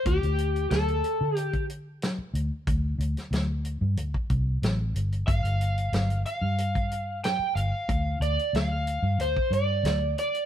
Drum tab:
HH |xxxxxxx-xxx-x-x-|x-xxx-x-x-x-x-xx|xxxxxxx-xxx-x-x-|x-xxx-x-x-x-x-xx|
SD |----o-------o---|---oo-------o---|----o-------o---|----o-------o---|
BD |o--------o------|o--------oo-----|o--------o------|o--------o------|